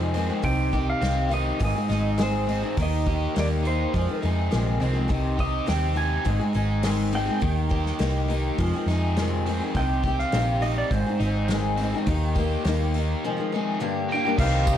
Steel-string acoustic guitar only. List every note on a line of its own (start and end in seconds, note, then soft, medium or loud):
0.00 0.15 F2 medium
0.00 0.15 C3 medium
0.00 0.13 D#3 medium
0.00 0.15 G#3 medium
0.00 0.16 C4 medium
0.00 0.16 G#4 medium
0.14 0.29 D#3 medium
0.14 0.29 G#3 medium
0.14 0.29 C4 medium
0.14 0.28 G#4 medium
0.29 0.42 D#3 soft
0.29 0.43 G#3 soft
0.29 0.43 C4 soft
0.29 0.44 G#4 soft
0.42 0.73 C3 medium
0.42 0.71 D#3 medium
0.42 0.72 C4 medium
0.42 0.73 D#4 medium
0.42 0.74 G4 medium
0.72 1.01 D#3 medium
0.72 1.01 C4 medium
0.72 1.02 D#4 medium
0.72 1.02 G4 medium
1.02 1.31 C3 medium
1.02 1.28 D#3 medium
1.02 1.29 C4 medium
1.02 1.31 D#4 medium
1.02 1.32 G4 medium
1.29 1.59 D#3 soft
1.29 1.60 C4 medium
1.29 1.60 D#4 medium
1.33 1.61 G4 medium
1.59 1.75 G#2 medium
1.59 1.75 D#3 medium
1.59 1.75 G#3 medium
1.59 1.76 C4 medium
1.59 1.75 D#4 medium
1.59 1.74 G#4 medium
1.75 1.87 G#3 soft
1.75 1.89 C4 soft
1.75 1.90 D#4 medium
1.75 1.90 G#4 medium
1.89 2.17 G#3 medium
1.89 2.18 C4 medium
1.89 2.18 D#4 medium
1.89 2.18 G#4 medium
2.18 2.48 G#2 medium
2.18 2.48 D#3 medium
2.18 2.45 G#3 medium
2.18 2.45 C4 medium
2.18 2.47 D#4 medium
2.18 2.48 G#4 medium
2.46 2.62 G#3 medium
2.46 2.62 C4 medium
2.46 2.62 D#4 medium
2.46 2.61 G#4 medium
2.62 2.78 C4 soft
2.62 2.78 D#4 soft
2.62 2.77 G#4 soft
2.66 2.77 G#3 soft
2.77 3.05 D#3 medium
2.77 3.06 A#3 medium
2.77 3.07 D#4 medium
2.77 3.08 G4 medium
3.06 3.35 D#3 medium
3.06 3.35 A#3 medium
3.06 3.37 D#4 medium
3.06 3.37 G4 medium
3.36 3.63 D#3 medium
3.36 3.64 A#3 medium
3.36 3.65 D#4 medium
3.36 3.66 G4 medium
3.64 3.94 D#3 medium
3.64 3.94 A#3 medium
3.64 3.95 D#4 medium
3.64 3.95 G4 medium
3.94 4.08 F2 medium
3.94 4.09 C3 medium
3.94 4.09 D#3 medium
3.94 4.08 G#3 medium
3.94 4.08 C4 medium
3.94 4.06 G#4 medium
4.07 4.21 D#3 soft
4.07 4.22 G#3 soft
4.07 4.23 C4 soft
4.07 4.22 G#4 soft
4.22 4.52 D#3 medium
4.22 4.52 G#3 medium
4.22 4.53 C4 medium
4.22 4.53 G#4 medium
4.51 4.81 F2 medium
4.51 4.82 C3 medium
4.51 4.79 D#3 medium
4.51 4.80 G#3 medium
4.51 4.81 C4 medium
4.51 4.82 G#4 medium
4.80 4.95 D#3 medium
4.80 4.95 G#3 medium
4.80 4.94 C4 medium
4.80 4.92 G#4 medium
4.93 5.09 G#3 soft
4.93 5.08 C4 soft
4.93 5.09 G#4 medium
4.97 5.08 D#3 soft
5.08 5.38 C3 medium
5.08 5.38 D#3 medium
5.08 5.39 C4 medium
5.08 5.39 D#4 medium
5.08 5.40 G4 medium
5.39 5.66 D#3 medium
5.39 5.66 C4 medium
5.39 5.67 D#4 medium
5.39 5.67 G4 medium
5.66 5.97 C3 medium
5.66 5.92 D#3 medium
5.66 5.94 C4 medium
5.66 5.95 D#4 medium
5.66 5.96 G4 medium
5.93 6.24 D#3 medium
5.93 6.25 C4 medium
5.93 6.25 D#4 medium
5.93 6.27 G4 medium
6.25 6.40 G#2 medium
6.25 6.40 D#3 medium
6.25 6.41 G#3 medium
6.25 6.40 C4 medium
6.25 6.40 D#4 medium
6.25 6.38 G#4 medium
6.39 6.52 G#3 soft
6.39 6.53 C4 soft
6.39 6.55 D#4 soft
6.39 6.55 G#4 medium
6.53 6.83 G#3 medium
6.53 6.83 C4 medium
6.53 6.83 D#4 medium
6.53 6.84 G#4 medium
6.83 7.13 G#2 medium
6.83 7.14 D#3 medium
6.83 7.11 G#3 medium
6.83 7.12 C4 medium
6.83 7.13 D#4 medium
6.83 7.14 G#4 medium
7.12 7.28 G#3 medium
7.12 7.28 C4 medium
7.12 7.26 D#4 medium
7.12 7.24 G#4 medium
7.26 7.39 G#3 soft
7.26 7.40 C4 soft
7.26 7.40 D#4 soft
7.26 7.41 G#4 medium
7.40 7.68 D#3 medium
7.40 7.68 A#3 medium
7.40 7.70 D#4 medium
7.40 7.71 G4 medium
7.69 7.98 D#3 medium
7.69 7.98 A#3 medium
7.69 7.99 D#4 medium
7.69 8.00 G4 medium
7.99 8.27 D#3 medium
7.99 8.28 A#3 medium
7.99 8.29 D#4 medium
7.99 8.30 G4 loud
8.28 8.57 D#3 medium
8.28 8.59 A#3 medium
8.28 8.59 D#4 medium
8.28 8.60 G4 medium
8.58 8.73 F2 medium
8.58 8.74 C3 medium
8.58 8.74 D#3 medium
8.58 8.74 G#3 medium
8.58 8.74 C4 medium
8.58 8.72 G#4 medium
8.73 8.88 G#3 medium
8.73 8.89 C4 medium
8.73 8.88 G#4 medium
8.78 8.86 D#3 soft
8.88 9.16 D#3 medium
8.88 9.17 G#3 medium
8.88 9.18 C4 medium
8.88 9.18 G#4 medium
9.17 9.46 F2 medium
9.17 9.47 C3 medium
9.17 9.46 D#3 medium
9.17 9.47 G#3 medium
9.17 9.47 C4 medium
9.17 9.47 G#4 medium
9.47 9.61 D#3 medium
9.47 9.61 G#3 medium
9.47 9.60 C4 medium
9.47 9.59 G#4 medium
9.60 9.75 D#3 soft
9.60 9.76 G#3 soft
9.60 9.75 C4 soft
9.60 9.75 G#4 soft
9.75 10.04 C3 medium
9.75 10.03 D#3 medium
9.75 10.05 C4 medium
9.75 10.05 D#4 medium
9.75 10.05 G4 medium
10.05 10.32 D#3 medium
10.05 10.33 C4 medium
10.05 10.34 D#4 medium
10.05 10.34 G4 medium
10.32 10.62 C3 medium
10.32 10.59 D#3 medium
10.32 10.61 C4 medium
10.32 10.62 D#4 medium
10.32 10.63 G4 medium
10.61 10.91 D#3 medium
10.61 10.92 C4 medium
10.61 10.92 D#4 medium
10.61 10.92 G4 medium
10.92 11.06 G#2 medium
10.92 11.06 D#3 medium
10.92 11.07 G#3 medium
10.92 11.07 C4 medium
10.92 11.07 D#4 medium
10.92 11.05 G#4 medium
11.07 11.20 G#3 soft
11.07 11.22 C4 soft
11.07 11.22 D#4 medium
11.07 11.21 G#4 medium
11.21 11.50 G#3 medium
11.21 11.50 C4 medium
11.21 11.51 D#4 medium
11.21 11.51 G#4 medium
11.50 11.79 G#2 medium
11.50 11.79 D#3 medium
11.50 11.79 G#3 medium
11.50 11.79 C4 medium
11.50 11.80 D#4 medium
11.50 11.80 G#4 medium
11.80 11.94 G#3 medium
11.80 11.94 C4 medium
11.80 11.94 D#4 medium
11.80 11.93 G#4 medium
11.94 12.08 C4 soft
11.94 12.07 D#4 medium
11.94 12.08 G#4 medium
11.98 12.07 G#3 soft
12.07 12.35 D#3 medium
12.07 12.37 A#3 medium
12.07 12.37 D#4 medium
12.07 12.38 G4 medium
12.37 12.65 D#3 medium
12.37 12.66 A#3 medium
12.37 12.67 D#4 medium
12.37 12.67 G4 medium
12.66 12.94 D#3 medium
12.66 12.95 A#3 medium
12.66 12.96 D#4 medium
12.66 12.96 G4 loud
12.95 13.24 D#3 medium
12.95 13.24 A#3 medium
12.95 13.25 D#4 medium
12.95 13.25 G4 medium
13.24 13.38 F2 medium
13.24 13.38 C3 medium
13.24 13.39 D#3 medium
13.24 13.39 G#3 medium
13.24 13.37 C4 medium
13.24 13.36 G#4 medium
13.37 13.51 D#3 soft
13.37 13.52 G#3 soft
13.37 13.52 C4 medium
13.37 13.52 G#4 medium
13.52 13.80 D#3 medium
13.52 13.80 G#3 medium
13.52 13.81 C4 medium
13.52 13.82 G#4 medium
13.80 14.09 G2 medium
13.80 14.10 D3 medium
13.80 14.10 G3 medium
13.80 14.10 A#3 medium
13.80 14.10 D4 medium
13.80 14.11 G4 medium
14.11 14.25 G3 medium
14.11 14.26 A#3 medium
14.11 14.25 D4 medium
14.11 14.24 G4 medium
14.25 14.41 G3 soft
14.25 14.40 A#3 soft
14.25 14.40 D4 soft
14.25 14.39 G4 medium
14.40 14.78 C3 medium
14.40 14.78 D#3 medium
14.40 14.78 C4 medium
14.40 14.78 D#4 medium
14.40 14.78 G4 medium